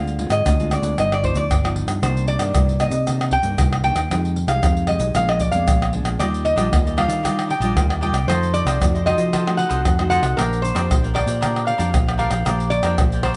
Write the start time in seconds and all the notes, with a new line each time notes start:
Already playing: D2 D3 F5
0.08 pandeiro, shaker
0.18 G#3 C4 F4, pandeiro
0.30 G#2 D#5, pandeiro, tamborim, shaker
0.45 D2 D3, pandeiro, tamborim, shaker, surdo
0.59 G#3 C4 F4, pandeiro, shaker
0.71 D5, pandeiro, tamborim, shaker
0.82 D2, pandeiro, shaker
0.97 G1 G2 F3 B3 D#4 D#5, pandeiro, tamborim, shaker, surdo
1.12 D5, pandeiro, tamborim, shaker
1.22 F3 B3 D#4 C5, pandeiro, surdo
1.35 D2 D5, pandeiro, shaker
1.50 G1, pandeiro, tamborim, shaker, surdo
1.63 F3 B3 D#4, pandeiro, tamborim, shaker
1.76 pandeiro
1.87 G2, pandeiro, tamborim, shaker
2.02 C2 C3 D#3 A#3 D4 C5, pandeiro, tamborim, shaker, surdo
2.17 pandeiro, shaker
2.28 D5, pandeiro
2.39 G2 D#3 A#3 D4, pandeiro, tamborim, shaker
2.54 C2 G2, pandeiro, tamborim, shaker, surdo
2.69 pandeiro, shaker
2.80 D#3 A#3 D4 D#5, pandeiro, tamborim, shaker
2.91 C3, pandeiro, shaker
3.07 C3 D#3 A#3 D4, pandeiro, tamborim, shaker, surdo
3.21 pandeiro, tamborim, shaker
3.31 G5, pandeiro, surdo
3.43 G2 D#3 A#3 D4, pandeiro, shaker
3.58 C2 G2, pandeiro, tamborim, shaker, surdo
3.73 pandeiro, tamborim, shaker
3.84 D#3 A#3 D4 G5, pandeiro
3.95 D#2, pandeiro, tamborim, shaker
4.10 F2 F3 G#3 D#4 G4, pandeiro, tamborim, shaker, surdo
4.25 pandeiro, shaker
4.36 pandeiro
4.47 C2 G#3 D#4 G4 F5, pandeiro, tamborim, shaker
4.63 F2 C3, pandeiro, tamborim, shaker, surdo
4.77 pandeiro, shaker
4.87 G#3 D#4 G4 D#5, pandeiro, tamborim
4.99 B1, pandeiro, shaker
5.15 A#1 A#2 G#3 B3 D4 F5, pandeiro, tamborim, shaker, surdo
5.29 D#5, pandeiro, tamborim, shaker
5.40 D5, pandeiro, shaker, surdo
5.51 F2 G#3 B3 D4 F5, pandeiro, shaker
5.67 A#1 F3, pandeiro, tamborim, shaker, surdo
5.82 pandeiro, tamborim, shaker
5.93 G#3 B3 D4, pandeiro
6.04 A#1, pandeiro, tamborim, shaker
6.19 D#2 D#3 G3 F4 G4 D5 D#5, pandeiro, tamborim, shaker, surdo
6.34 pandeiro, shaker
6.45 D#5, pandeiro
6.56 A#1 G3 D4 F4 G4 D5 D#5, pandeiro, tamborim, shaker
6.71 D#2 A#2, pandeiro, tamborim, shaker, surdo
6.85 G4 D5 D#5, pandeiro, shaker
6.97 G3 D4 F4 G4 D5 D#5 F5, pandeiro, tamborim
7.08 D#3 G4 D5 D#5, pandeiro, shaker
7.23 D#3 G3 D4 F4 G4 D5 D#5, pandeiro, tamborim, shaker, surdo
7.39 pandeiro, tamborim, shaker
7.48 D4 G4 D5 D#5 G5, pandeiro
7.60 A#1 G3 D4 F4 G4 D5 D#5, pandeiro, shaker
7.76 D#2 A#2, pandeiro, tamborim, shaker, surdo
7.90 G4 D5 D#5, pandeiro, tamborim, shaker
8.01 G3 D4 F4 G4 D5 D#5 G5, pandeiro
8.12 C2 G4 D5 D#5, pandeiro, tamborim, shaker
8.27 F2 F3 A3 D#4 F4 A4 C5 D#5, pandeiro, tamborim, shaker, surdo
8.43 pandeiro, shaker
8.54 D5, pandeiro, shaker
8.65 C2 F4 A4 C5 D#5, pandeiro, tamborim, shaker
8.80 F2 C3 A3 D#4 F#4, pandeiro, tamborim, shaker, surdo
8.95 A4 C5 D#5, pandeiro, shaker
9.06 A3 D#4 F4 F#4 A4 C5 D#5, pandeiro, tamborim
9.18 F3 A4 C5 D#5, pandeiro, shaker
9.33 F3 F4 A4 C5 D#5, pandeiro, tamborim, shaker, surdo
9.47 A3 D#4 F#4, pandeiro, tamborim, shaker
9.57 F4 A4 C5 D#5 F#5, pandeiro
9.69 C2 F4 A4 C5 D#5, pandeiro, shaker
9.85 F2 C3, pandeiro, tamborim, shaker, surdo
9.99 A3 D#4 F#4 A4 C5 D#5, pandeiro, tamborim, shaker
10.10 F4 A4 C5 D#5 F#5, pandeiro, shaker
10.22 C2 A4 C5 D#5, pandeiro, tamborim, shaker
10.37 A#1 A#3 D4 G4 A#4 C5 D5 G5, pandeiro, tamborim, shaker, surdo
10.53 pandeiro, shaker
10.62 C5, pandeiro, shaker
10.75 F2 D4 G4 A#4 C5 D5 G5, pandeiro, tamborim, shaker
10.90 A#1 F3, pandeiro, tamborim, shaker, surdo
11.02 A#4 D5 G5, pandeiro, shaker
11.14 D4 G4 A#4 C5 D5 G5, pandeiro, tamborim
11.26 A#2 A#4 D5 G5, pandeiro, shaker
11.41 A#3 D4 G4 A#4 C5 D5 G5, pandeiro, tamborim, shaker, surdo
11.56 pandeiro, tamborim, shaker
11.66 D4 A#4 D5 F5 G5, pandeiro
11.78 F2 D4 G4 A#4 C5 D5 G5, pandeiro, shaker
11.94 A#1 F3, pandeiro, tamborim, shaker, surdo
12.07 A#4 D5 G5, pandeiro, tamborim, shaker
12.18 D4 G4 A#4 C5 D5 F5 G5, pandeiro
12.30 A#1 A#4 D5 G5, pandeiro, tamborim, shaker
12.45 A#1 A#3 D4 G4 A#4 C5 D5 G5, pandeiro, tamborim, shaker, surdo
12.60 pandeiro, shaker
12.70 D5, pandeiro
12.83 F2 D4 G4 A#4 C5 D5 G5, pandeiro, tamborim, shaker
12.98 A#1 F3, pandeiro, tamborim, shaker, surdo
13.12 A#4 D5 G5, pandeiro, shaker
13.23 D4 G4 A#4 C5 D5 G5, pandeiro, tamborim